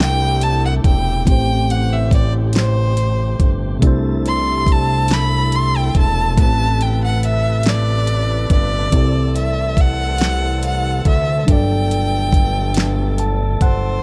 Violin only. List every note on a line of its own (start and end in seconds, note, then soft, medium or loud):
0.01 0.45 G5 loud
0.43 0.64 A5 loud
0.65 0.74 F#5 loud
0.85 1.24 G5 loud
1.28 1.73 G5 loud
1.71 1.94 F#5 loud
1.93 2.13 E5 medium
2.14 2.33 D5 medium
2.57 3.48 C5 medium
4.28 4.73 C6 loud
4.71 5.14 A5 loud
5.13 5.57 B5 loud
5.55 5.78 C6 loud
5.77 5.96 G5 loud
5.98 6.36 A5 loud
6.40 6.83 A5 loud
6.82 7.02 G5 loud
7.04 7.23 F#5 loud
7.26 7.70 E5 loud
7.68 8.52 D5 loud
8.53 9.32 D5 loud
9.37 9.82 E5 medium
9.80 10.64 F#5 loud
10.66 11.04 F#5 medium
11.08 11.46 E5 medium
11.51 13.16 G5 loud
13.63 14.03 C5 medium